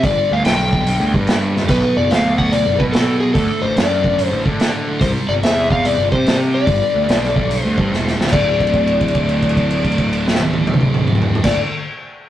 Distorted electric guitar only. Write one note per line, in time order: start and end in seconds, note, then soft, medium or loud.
0.04 0.44 G2 medium
0.04 0.44 D3 medium
0.04 0.45 G3 medium
0.45 0.71 G2 medium
0.45 0.72 D3 medium
0.45 0.72 G3 medium
0.72 0.85 G2 medium
0.72 0.86 D3 medium
0.72 0.86 G3 medium
0.86 1.26 G2 medium
0.86 1.27 D3 medium
0.86 1.28 G3 medium
1.28 1.54 G2 medium
1.28 1.54 D3 medium
1.28 1.55 G3 medium
1.55 1.68 G2 medium
1.55 1.69 D3 medium
1.55 1.69 G3 medium
1.69 2.09 B2 medium
1.69 2.11 F#3 medium
1.69 2.11 B3 medium
2.10 2.37 B2 medium
2.10 2.39 F#3 medium
2.10 2.38 B3 medium
2.38 2.52 B2 medium
2.38 2.53 F#3 medium
2.38 2.53 B3 medium
2.53 2.93 B2 medium
2.53 2.94 F#3 medium
2.53 2.95 B3 medium
2.95 3.21 B2 medium
2.95 3.22 F#3 medium
2.95 3.23 B3 medium
3.22 3.35 B2 medium
3.22 3.36 F#3 medium
3.22 3.36 B3 medium
3.36 3.76 D2 medium
3.36 3.76 A2 medium
3.36 3.77 D3 loud
3.77 4.03 D2 medium
3.77 4.04 A2 medium
3.77 4.04 D3 medium
4.04 4.17 D2 medium
4.04 4.18 A2 medium
4.04 4.18 D3 medium
4.18 4.59 D2 medium
4.18 4.60 A2 medium
4.18 4.61 D3 medium
4.61 4.87 D2 medium
4.61 4.88 A2 medium
4.61 4.88 D3 medium
4.88 5.01 D2 medium
4.88 5.01 A2 medium
4.88 5.02 D3 medium
5.01 5.41 C3 medium
5.01 5.43 G3 medium
5.01 5.43 C4 medium
5.42 5.69 C3 medium
5.42 5.70 G3 medium
5.42 5.70 C4 medium
5.70 5.83 C3 medium
5.70 5.84 G3 medium
5.70 5.84 C4 medium
5.84 6.24 C3 medium
5.84 6.25 G3 medium
5.84 6.25 C4 loud
6.25 6.52 C3 medium
6.25 6.52 G3 medium
6.25 6.53 C4 medium
6.53 6.66 C3 medium
6.53 6.67 G3 medium
6.53 6.67 C4 medium
6.67 7.08 G2 medium
6.67 7.08 D3 loud
6.67 7.08 G3 medium
7.09 7.35 G2 medium
7.09 7.36 D3 medium
7.09 7.36 G3 medium
7.36 7.49 G2 medium
7.36 7.49 D3 medium
7.36 7.50 G3 medium
7.50 7.90 G2 medium
7.50 7.90 D3 medium
7.50 7.91 G3 loud
7.91 8.18 G2 medium
7.91 8.19 D3 medium
7.91 8.19 G3 medium
8.19 8.32 G2 medium
8.19 8.33 D3 medium
8.19 8.33 G3 medium
8.32 11.43 D2 medium
8.32 11.46 A2 medium
8.36 11.47 D3 loud
11.44 11.59 D2 medium
11.44 11.60 A2 medium
11.48 11.61 D3 medium